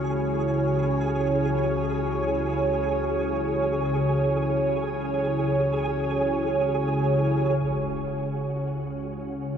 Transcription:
Already playing: C#2 C#3 E4 F#4 G#4 C#5
7.59 C#2 C#3 E4 F#4, impact
9.23 F#4

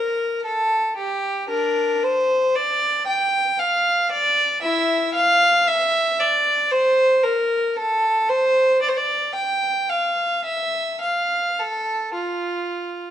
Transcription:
Already playing: A#4
0.45 A4
0.97 G4
1.49 D4 A#4
2.03 C5
2.56 D5
3.07 G5
3.59 F5
4.11 D5
4.62 E4 E5
5.15 F5
5.67 E5
6.19 D5
6.71 C5
7.23 A#4
7.76 A4
8.29 C5
8.81 D5
8.89 C5
8.97 D5
9.35 G5
9.89 F5
10.45 E5
11.01 F5
11.59 A4
12.14 F4

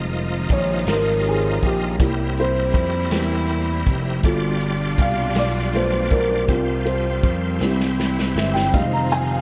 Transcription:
Already playing: F1 C3 D#3 F3 G3 G#3 D#4 F4 D#5
0.13 closed hi-hat
0.50 A#1 C#5, kick, closed hi-hat
0.86 G#1 A#4, snare, closed hi-hat
1.19 G4
1.25 G#4, closed hi-hat
1.62 A#1 G4, kick, closed hi-hat
2.00 C2 G3 A#3 C4 E4 A#4, kick, closed hi-hat
2.37 C5, closed hi-hat
2.74 F2, kick, closed hi-hat
3.11 E2 G3 A#3 E4, snare, closed hi-hat
3.49 closed hi-hat
3.86 F1, kick, closed hi-hat
4.23 G1 B2 G3 D4 F4 A4 D5, kick, closed hi-hat
4.61 closed hi-hat
4.98 C2 F5, kick, closed hi-hat
5.35 B1 D5, snare, closed hi-hat
5.73 A3 F4 B4 C5, closed hi-hat
6.10 B1 A#4, kick, closed hi-hat
6.47 C2 F3 G3 C4 E4 F4 C5, kick, closed hi-hat
6.55 F4
6.85 C5, closed hi-hat
7.23 F2, kick, closed hi-hat
7.60 C2 E3 G3 C4 E4 C5, snare
7.80 snare
7.99 snare
8.19 snare
8.35 G1 E5, snare
8.54 G5, snare
8.73 F1 D#3 F3 G3 G#3 D#4 F4 B4 F5, kick, closed hi-hat, tambourine
8.81 C5
8.93 A#5
9.11 G#5, closed hi-hat, tambourine
9.31 F5

